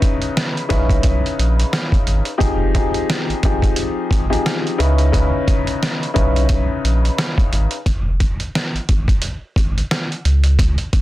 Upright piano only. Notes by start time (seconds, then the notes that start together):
Already playing: C#3 C#4 D#4 E4 B4
0.69 C#3 C#4 D#4 E4 B4
2.38 F3 C4 D#4 G4 G#4
2.75 F3 C4 D#4 G4 G#4
3.45 F3 C4 D#4 G4 G#4
4.30 F3 C4 D#4 G4 G#4
4.78 C#3 C#4 D#4 E4 B4
5.12 C#3 C#4 D#4 E4 B4
6.14 C#3 C#4 D#4 E4 B4